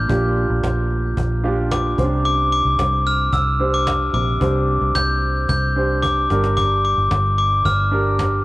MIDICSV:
0, 0, Header, 1, 5, 480
1, 0, Start_track
1, 0, Tempo, 540443
1, 80, Time_signature, 4, 2, 24, 8
1, 7501, End_track
2, 0, Start_track
2, 0, Title_t, "Glockenspiel"
2, 0, Program_c, 0, 9
2, 0, Note_on_c, 0, 91, 76
2, 532, Note_off_c, 0, 91, 0
2, 1524, Note_on_c, 0, 86, 61
2, 1990, Note_off_c, 0, 86, 0
2, 2001, Note_on_c, 0, 86, 77
2, 2109, Note_off_c, 0, 86, 0
2, 2242, Note_on_c, 0, 86, 65
2, 2725, Note_on_c, 0, 89, 72
2, 2735, Note_off_c, 0, 86, 0
2, 2960, Note_on_c, 0, 88, 71
2, 2969, Note_off_c, 0, 89, 0
2, 3321, Note_on_c, 0, 86, 80
2, 3331, Note_off_c, 0, 88, 0
2, 3666, Note_off_c, 0, 86, 0
2, 3677, Note_on_c, 0, 86, 74
2, 4400, Note_on_c, 0, 91, 84
2, 4420, Note_off_c, 0, 86, 0
2, 4868, Note_off_c, 0, 91, 0
2, 4879, Note_on_c, 0, 91, 69
2, 5351, Note_on_c, 0, 86, 69
2, 5374, Note_off_c, 0, 91, 0
2, 5824, Note_off_c, 0, 86, 0
2, 5835, Note_on_c, 0, 86, 75
2, 6072, Note_off_c, 0, 86, 0
2, 6082, Note_on_c, 0, 86, 76
2, 6546, Note_off_c, 0, 86, 0
2, 6557, Note_on_c, 0, 86, 71
2, 6799, Note_on_c, 0, 89, 66
2, 6806, Note_off_c, 0, 86, 0
2, 7501, Note_off_c, 0, 89, 0
2, 7501, End_track
3, 0, Start_track
3, 0, Title_t, "Grand piano"
3, 0, Program_c, 1, 0
3, 0, Control_c, 1, 64, 127
3, 0, Note_on_c, 1, 62, 64
3, 0, Note_on_c, 1, 65, 54
3, 0, Note_on_c, 1, 70, 71
3, 77, Note_off_c, 1, 62, 0
3, 77, Note_on_c, 1, 62, 63
3, 82, Note_on_c, 1, 46, 58
3, 83, Note_off_c, 1, 65, 0
3, 83, Note_on_c, 1, 65, 53
3, 90, Note_on_c, 1, 67, 66
3, 766, Note_off_c, 1, 46, 0
3, 770, Note_off_c, 1, 62, 0
3, 773, Note_off_c, 1, 65, 0
3, 777, Note_off_c, 1, 67, 0
3, 1275, Note_on_c, 1, 62, 69
3, 1279, Note_on_c, 1, 65, 61
3, 1288, Note_on_c, 1, 67, 75
3, 1749, Note_off_c, 1, 67, 0
3, 1757, Note_on_c, 1, 61, 54
3, 1758, Note_off_c, 1, 62, 0
3, 1760, Note_off_c, 1, 65, 0
3, 1762, Note_on_c, 1, 48, 52
3, 1762, Note_on_c, 1, 67, 57
3, 1769, Note_on_c, 1, 72, 65
3, 1773, Control_c, 1, 64, 0
3, 1775, Note_off_c, 1, 70, 0
3, 1815, Note_on_c, 1, 62, 65
3, 1816, Note_off_c, 1, 61, 0
3, 1912, Control_c, 1, 64, 127
3, 2445, Note_off_c, 1, 48, 0
3, 2529, Note_off_c, 1, 67, 0
3, 2532, Note_off_c, 1, 72, 0
3, 2556, Note_off_c, 1, 62, 0
3, 3191, Note_on_c, 1, 62, 56
3, 3196, Note_on_c, 1, 67, 54
3, 3202, Note_on_c, 1, 72, 68
3, 3671, Note_on_c, 1, 48, 49
3, 3714, Note_off_c, 1, 62, 0
3, 3717, Note_off_c, 1, 67, 0
3, 3720, Note_off_c, 1, 72, 0
3, 3909, Note_on_c, 1, 62, 64
3, 3917, Note_on_c, 1, 67, 55
3, 3922, Note_on_c, 1, 72, 67
3, 4360, Note_off_c, 1, 48, 0
3, 4607, Note_off_c, 1, 62, 0
3, 4610, Note_off_c, 1, 67, 0
3, 4613, Note_off_c, 1, 72, 0
3, 5117, Note_on_c, 1, 62, 59
3, 5119, Note_on_c, 1, 67, 56
3, 5127, Note_on_c, 1, 72, 67
3, 5582, Note_off_c, 1, 62, 0
3, 5590, Note_off_c, 1, 67, 0
3, 5596, Note_on_c, 1, 62, 61
3, 5601, Note_on_c, 1, 43, 51
3, 5603, Note_on_c, 1, 67, 60
3, 5604, Note_off_c, 1, 72, 0
3, 5608, Note_on_c, 1, 70, 67
3, 5613, Control_c, 1, 64, 0
3, 5751, Control_c, 1, 64, 127
3, 6285, Note_off_c, 1, 43, 0
3, 6366, Note_off_c, 1, 62, 0
3, 6370, Note_off_c, 1, 67, 0
3, 6372, Note_off_c, 1, 70, 0
3, 7028, Note_on_c, 1, 62, 61
3, 7033, Note_on_c, 1, 67, 55
3, 7038, Note_on_c, 1, 70, 69
3, 7501, Note_off_c, 1, 62, 0
3, 7501, Note_off_c, 1, 67, 0
3, 7501, Note_off_c, 1, 70, 0
3, 7501, End_track
4, 0, Start_track
4, 0, Title_t, "Fingered electric bass"
4, 0, Program_c, 2, 33
4, 84, Note_on_c, 2, 34, 99
4, 417, Note_off_c, 2, 34, 0
4, 441, Note_on_c, 2, 34, 77
4, 552, Note_off_c, 2, 34, 0
4, 564, Note_on_c, 2, 34, 81
4, 1009, Note_off_c, 2, 34, 0
4, 1040, Note_on_c, 2, 34, 90
4, 1725, Note_off_c, 2, 34, 0
4, 1761, Note_on_c, 2, 36, 88
4, 2325, Note_off_c, 2, 36, 0
4, 2354, Note_on_c, 2, 36, 68
4, 2468, Note_off_c, 2, 36, 0
4, 2479, Note_on_c, 2, 36, 81
4, 2926, Note_off_c, 2, 36, 0
4, 2955, Note_on_c, 2, 36, 84
4, 3642, Note_off_c, 2, 36, 0
4, 3672, Note_on_c, 2, 34, 81
4, 3899, Note_off_c, 2, 34, 0
4, 3916, Note_on_c, 2, 36, 100
4, 4253, Note_off_c, 2, 36, 0
4, 4274, Note_on_c, 2, 36, 92
4, 4388, Note_off_c, 2, 36, 0
4, 4396, Note_on_c, 2, 36, 76
4, 4844, Note_off_c, 2, 36, 0
4, 4875, Note_on_c, 2, 36, 96
4, 5562, Note_off_c, 2, 36, 0
4, 5599, Note_on_c, 2, 31, 89
4, 6164, Note_off_c, 2, 31, 0
4, 6196, Note_on_c, 2, 31, 73
4, 6309, Note_off_c, 2, 31, 0
4, 6317, Note_on_c, 2, 31, 88
4, 6765, Note_off_c, 2, 31, 0
4, 6795, Note_on_c, 2, 31, 91
4, 7482, Note_off_c, 2, 31, 0
4, 7501, End_track
5, 0, Start_track
5, 0, Title_t, "Cajon"
5, 84, Note_on_c, 9, 36, 97
5, 173, Note_off_c, 9, 36, 0
5, 322, Note_on_c, 9, 38, 38
5, 411, Note_off_c, 9, 38, 0
5, 563, Note_on_c, 9, 36, 83
5, 564, Note_on_c, 9, 38, 78
5, 569, Note_off_c, 9, 38, 0
5, 569, Note_on_c, 9, 38, 56
5, 652, Note_off_c, 9, 36, 0
5, 658, Note_off_c, 9, 38, 0
5, 800, Note_on_c, 9, 38, 31
5, 889, Note_off_c, 9, 38, 0
5, 1040, Note_on_c, 9, 36, 89
5, 1129, Note_off_c, 9, 36, 0
5, 1288, Note_on_c, 9, 38, 27
5, 1377, Note_off_c, 9, 38, 0
5, 1522, Note_on_c, 9, 36, 86
5, 1523, Note_on_c, 9, 38, 99
5, 1527, Note_off_c, 9, 38, 0
5, 1527, Note_on_c, 9, 38, 80
5, 1611, Note_off_c, 9, 36, 0
5, 1616, Note_off_c, 9, 38, 0
5, 1761, Note_on_c, 9, 36, 77
5, 1849, Note_off_c, 9, 36, 0
5, 2003, Note_on_c, 9, 38, 35
5, 2092, Note_off_c, 9, 38, 0
5, 2237, Note_on_c, 9, 38, 36
5, 2326, Note_off_c, 9, 38, 0
5, 2478, Note_on_c, 9, 36, 95
5, 2478, Note_on_c, 9, 38, 88
5, 2483, Note_off_c, 9, 38, 0
5, 2483, Note_on_c, 9, 38, 60
5, 2566, Note_off_c, 9, 36, 0
5, 2571, Note_off_c, 9, 38, 0
5, 2715, Note_on_c, 9, 38, 30
5, 2804, Note_off_c, 9, 38, 0
5, 2955, Note_on_c, 9, 36, 84
5, 3044, Note_off_c, 9, 36, 0
5, 3203, Note_on_c, 9, 38, 29
5, 3291, Note_off_c, 9, 38, 0
5, 3436, Note_on_c, 9, 38, 95
5, 3438, Note_on_c, 9, 36, 97
5, 3441, Note_off_c, 9, 38, 0
5, 3441, Note_on_c, 9, 38, 77
5, 3527, Note_off_c, 9, 36, 0
5, 3530, Note_off_c, 9, 38, 0
5, 3675, Note_on_c, 9, 38, 33
5, 3763, Note_off_c, 9, 38, 0
5, 3917, Note_on_c, 9, 36, 96
5, 4006, Note_off_c, 9, 36, 0
5, 4157, Note_on_c, 9, 38, 32
5, 4245, Note_off_c, 9, 38, 0
5, 4278, Note_on_c, 9, 38, 32
5, 4367, Note_off_c, 9, 38, 0
5, 4396, Note_on_c, 9, 38, 79
5, 4398, Note_on_c, 9, 36, 80
5, 4401, Note_off_c, 9, 38, 0
5, 4401, Note_on_c, 9, 38, 56
5, 4487, Note_off_c, 9, 36, 0
5, 4490, Note_off_c, 9, 38, 0
5, 4518, Note_on_c, 9, 38, 23
5, 4607, Note_off_c, 9, 38, 0
5, 4631, Note_on_c, 9, 38, 32
5, 4719, Note_off_c, 9, 38, 0
5, 4876, Note_on_c, 9, 36, 88
5, 4964, Note_off_c, 9, 36, 0
5, 5120, Note_on_c, 9, 38, 32
5, 5209, Note_off_c, 9, 38, 0
5, 5355, Note_on_c, 9, 38, 47
5, 5358, Note_on_c, 9, 36, 86
5, 5444, Note_off_c, 9, 38, 0
5, 5447, Note_off_c, 9, 36, 0
5, 5597, Note_on_c, 9, 38, 60
5, 5686, Note_off_c, 9, 38, 0
5, 5718, Note_on_c, 9, 38, 74
5, 5806, Note_off_c, 9, 38, 0
5, 5836, Note_on_c, 9, 36, 86
5, 5925, Note_off_c, 9, 36, 0
5, 6074, Note_on_c, 9, 38, 32
5, 6163, Note_off_c, 9, 38, 0
5, 6315, Note_on_c, 9, 38, 81
5, 6317, Note_on_c, 9, 36, 86
5, 6319, Note_off_c, 9, 38, 0
5, 6319, Note_on_c, 9, 38, 62
5, 6406, Note_off_c, 9, 36, 0
5, 6408, Note_off_c, 9, 38, 0
5, 6552, Note_on_c, 9, 38, 33
5, 6641, Note_off_c, 9, 38, 0
5, 6795, Note_on_c, 9, 36, 99
5, 6884, Note_off_c, 9, 36, 0
5, 7038, Note_on_c, 9, 38, 26
5, 7127, Note_off_c, 9, 38, 0
5, 7275, Note_on_c, 9, 38, 89
5, 7278, Note_on_c, 9, 36, 91
5, 7280, Note_off_c, 9, 38, 0
5, 7280, Note_on_c, 9, 38, 74
5, 7367, Note_off_c, 9, 36, 0
5, 7369, Note_off_c, 9, 38, 0
5, 7501, End_track
0, 0, End_of_file